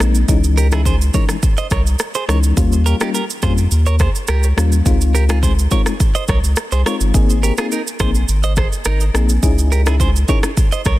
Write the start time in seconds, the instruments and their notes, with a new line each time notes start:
0.00 sub bass A#1, fm electric piano G#3 A#3 C4 D#4, cross-stick, shaker
0.15 shaker
0.28 sub bass C#2, fm electric piano E3 G#3 C#4 D#4, kick, shaker
0.44 shaker
0.57 clean electric guitar G4 A#4, shaker
0.72 fm electric piano E3 G#3 C#4 D#4, clean electric guitar E4 G#4, cross-stick, shaker
0.85 clean electric guitar G#4 C5, kick, shaker
1.01 shaker
1.14 fm electric piano E3 G#3 C#4 D#4, clean electric guitar A#4 C#5, kick, shaker
1.29 cross-stick, shaker
1.43 kick, shaker
1.58 clean electric guitar C5 D#5, shaker
1.70 sub bass C2, clean electric guitar A#4 C#5, kick, cross-stick, shaker
1.87 shaker
1.99 cross-stick, shaker
2.15 clean electric guitar G#4 C5, shaker
2.28 sub bass C#2, fm electric piano E3 G#3 C#4 D#4, clean electric guitar A#4 C#5, cross-stick, shaker
2.43 shaker
2.57 sub bass D#2, fm electric piano G3 A#3 C#4 F4, kick, shaker
2.72 shaker
2.86 clean electric guitar G4 A#4, shaker
3.00 fm electric piano G3 A#3 C#4 F4, clean electric guitar D#4 G4, cross-stick, shaker
3.15 clean electric guitar G4 A#4, shaker
3.30 shaker
3.42 sub bass F2, fm electric piano G3 A#3 C#4 F4, clean electric guitar G#4 C5, kick, cross-stick, shaker
3.58 shaker
3.71 sub bass D#2, shaker
3.86 clean electric guitar A#4 C#5, shaker
3.99 clean electric guitar G#4 C5, kick, cross-stick, shaker
4.15 shaker
4.28 sub bass C#2, clean electric guitar G4 A#4, cross-stick, shaker
4.43 shaker
4.57 sub bass D#2, fm electric piano G3 A#3 C#4 F4, cross-stick, shaker
4.72 shaker
4.85 sub bass C#2, fm electric piano G#3 C4 D#4 F4, kick, shaker
5.01 shaker
5.15 clean electric guitar G4 A#4, shaker
5.29 fm electric piano G#3 C4 D#4 F4, clean electric guitar F4 G#4, cross-stick, shaker
5.43 clean electric guitar G#4 C5, kick, shaker
5.59 shaker
5.71 fm electric piano G#3 C4 D#4 F4, clean electric guitar A#4 C#5, kick, shaker
5.86 cross-stick, shaker
6.00 kick, shaker
6.15 clean electric guitar C5 D#5, shaker
6.28 sub bass C2, clean electric guitar A#4 C#5, kick, cross-stick, shaker
6.43 sub bass C#2, shaker
6.56 cross-stick, shaker
6.72 sub bass C2, clean electric guitar G#4 C5, shaker
6.85 fm electric piano G#3 C4 D#4 F4, clean electric guitar A#4 C#5, cross-stick, shaker
7.01 sub bass G1, shaker
7.14 sub bass G#1, fm electric piano A#3 C4 D#4 G#4, kick, shaker
7.30 shaker
7.43 clean electric guitar G4 A#4, shaker
7.58 fm electric piano A#3 C4 D#4 G#4, clean electric guitar F4 G#4, cross-stick, shaker
7.72 clean electric guitar D#4 A#4, shaker
7.87 shaker
8.00 sub bass A#1, fm electric piano A#3 C4 D#4 G#4, clean electric guitar G#4 C5, kick, cross-stick, shaker
8.15 shaker
8.29 sub bass G#1, shaker
8.43 clean electric guitar C5 D#5, shaker
8.56 clean electric guitar G#4 C5, kick, cross-stick, shaker
8.73 shaker
8.85 sub bass G#1, clean electric guitar D#4 A#4, cross-stick, shaker
9.00 shaker
9.14 sub bass A#1, fm electric piano A#3 C4 D#4 G#4, cross-stick, shaker
9.29 shaker
9.43 sub bass C#2, fm electric piano C#4 D#4 E4 G#4, kick, shaker
9.58 shaker
9.72 clean electric guitar G4 A#4, shaker
9.86 fm electric piano C#4 D#4 E4 G#4, clean electric guitar E4 G#4, cross-stick, shaker
10.00 clean electric guitar G#4 C5, kick, shaker
10.16 shaker
10.28 fm electric piano C#4 D#4 E4 G#4, clean electric guitar A#4 C#5, kick, shaker
10.43 cross-stick, shaker
10.57 kick, shaker
10.72 clean electric guitar C5 D#5, shaker
10.85 sub bass C2, clean electric guitar A#4 C#5, kick, cross-stick, shaker